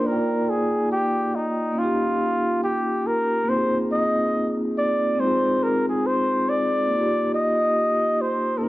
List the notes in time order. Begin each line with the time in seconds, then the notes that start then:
0.01 A#3 D5
0.06 D#4 F4 A#4
0.12 G5
0.50 G#4
0.92 G4
1.36 D#4
1.72 A#3 C#4
1.78 D#4 F4
1.84 G4
2.64 G4
3.07 A#4
3.44 A#3 C4
3.49 D#4 F4 C5
3.55 G#4
3.92 D#5
4.78 D5
5.15 G#3 C4
5.20 D#4 F4 C5
5.27 G#4
5.63 A#4
5.89 G#4
6.06 C5
6.49 D5
6.87 A#3
6.93 D#4 F4
6.99 G4
7.35 D#5
8.21 C5
8.57 A#3 C#4 A4
8.63 D#4 A#4